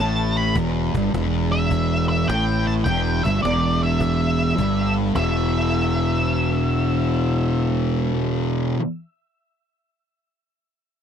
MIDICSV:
0, 0, Header, 1, 5, 480
1, 0, Start_track
1, 0, Key_signature, 1, "minor"
1, 0, Tempo, 575264
1, 468, Time_signature, 4, 2, 24, 8
1, 9196, End_track
2, 0, Start_track
2, 0, Title_t, "Lead electric guitar"
2, 0, Program_c, 0, 29
2, 0, Note_on_c, 0, 81, 94
2, 311, Note_on_c, 0, 83, 80
2, 321, Note_off_c, 0, 81, 0
2, 455, Note_off_c, 0, 83, 0
2, 1266, Note_on_c, 0, 76, 100
2, 1710, Note_off_c, 0, 76, 0
2, 1745, Note_on_c, 0, 76, 89
2, 1900, Note_on_c, 0, 79, 106
2, 1911, Note_off_c, 0, 76, 0
2, 2227, Note_off_c, 0, 79, 0
2, 2230, Note_on_c, 0, 81, 101
2, 2272, Note_off_c, 0, 81, 0
2, 2372, Note_on_c, 0, 79, 104
2, 2682, Note_off_c, 0, 79, 0
2, 2698, Note_on_c, 0, 76, 92
2, 2854, Note_off_c, 0, 76, 0
2, 2857, Note_on_c, 0, 74, 89
2, 3195, Note_off_c, 0, 74, 0
2, 3199, Note_on_c, 0, 76, 93
2, 4122, Note_off_c, 0, 76, 0
2, 4305, Note_on_c, 0, 76, 90
2, 6860, Note_off_c, 0, 76, 0
2, 9196, End_track
3, 0, Start_track
3, 0, Title_t, "Distorted electric guitar"
3, 0, Program_c, 1, 30
3, 0, Note_on_c, 1, 45, 105
3, 465, Note_off_c, 1, 45, 0
3, 466, Note_on_c, 1, 40, 109
3, 783, Note_off_c, 1, 40, 0
3, 808, Note_on_c, 1, 43, 107
3, 948, Note_off_c, 1, 43, 0
3, 951, Note_on_c, 1, 40, 89
3, 1904, Note_off_c, 1, 40, 0
3, 1912, Note_on_c, 1, 45, 102
3, 2384, Note_off_c, 1, 45, 0
3, 2388, Note_on_c, 1, 40, 120
3, 2704, Note_off_c, 1, 40, 0
3, 2720, Note_on_c, 1, 43, 108
3, 2860, Note_off_c, 1, 43, 0
3, 2863, Note_on_c, 1, 40, 96
3, 3820, Note_off_c, 1, 40, 0
3, 3826, Note_on_c, 1, 43, 90
3, 4289, Note_off_c, 1, 43, 0
3, 4292, Note_on_c, 1, 40, 104
3, 4308, Note_on_c, 1, 47, 111
3, 4321, Note_on_c, 1, 52, 102
3, 7314, Note_off_c, 1, 40, 0
3, 7330, Note_off_c, 1, 47, 0
3, 7342, Note_off_c, 1, 52, 0
3, 9196, End_track
4, 0, Start_track
4, 0, Title_t, "Fingered electric bass"
4, 0, Program_c, 2, 33
4, 0, Note_on_c, 2, 33, 89
4, 439, Note_off_c, 2, 33, 0
4, 462, Note_on_c, 2, 28, 97
4, 768, Note_off_c, 2, 28, 0
4, 787, Note_on_c, 2, 31, 90
4, 933, Note_off_c, 2, 31, 0
4, 950, Note_on_c, 2, 28, 94
4, 1875, Note_off_c, 2, 28, 0
4, 1908, Note_on_c, 2, 33, 94
4, 2354, Note_off_c, 2, 33, 0
4, 2384, Note_on_c, 2, 28, 90
4, 2689, Note_off_c, 2, 28, 0
4, 2712, Note_on_c, 2, 31, 94
4, 2855, Note_off_c, 2, 31, 0
4, 2871, Note_on_c, 2, 28, 83
4, 3796, Note_off_c, 2, 28, 0
4, 3825, Note_on_c, 2, 31, 93
4, 4272, Note_off_c, 2, 31, 0
4, 4303, Note_on_c, 2, 28, 87
4, 7291, Note_off_c, 2, 28, 0
4, 9196, End_track
5, 0, Start_track
5, 0, Title_t, "Cajon"
5, 0, Note_on_c, 9, 38, 105
5, 81, Note_off_c, 9, 38, 0
5, 462, Note_on_c, 9, 36, 111
5, 545, Note_off_c, 9, 36, 0
5, 789, Note_on_c, 9, 36, 109
5, 872, Note_off_c, 9, 36, 0
5, 954, Note_on_c, 9, 38, 104
5, 1037, Note_off_c, 9, 38, 0
5, 1425, Note_on_c, 9, 36, 109
5, 1509, Note_off_c, 9, 36, 0
5, 1915, Note_on_c, 9, 38, 110
5, 1999, Note_off_c, 9, 38, 0
5, 2384, Note_on_c, 9, 36, 110
5, 2468, Note_off_c, 9, 36, 0
5, 2711, Note_on_c, 9, 36, 102
5, 2795, Note_off_c, 9, 36, 0
5, 2879, Note_on_c, 9, 38, 116
5, 2962, Note_off_c, 9, 38, 0
5, 3279, Note_on_c, 9, 38, 32
5, 3342, Note_on_c, 9, 36, 113
5, 3363, Note_off_c, 9, 38, 0
5, 3425, Note_off_c, 9, 36, 0
5, 3824, Note_on_c, 9, 36, 101
5, 3908, Note_off_c, 9, 36, 0
5, 4300, Note_on_c, 9, 36, 108
5, 4303, Note_off_c, 9, 36, 0
5, 4303, Note_on_c, 9, 36, 98
5, 4387, Note_off_c, 9, 36, 0
5, 9196, End_track
0, 0, End_of_file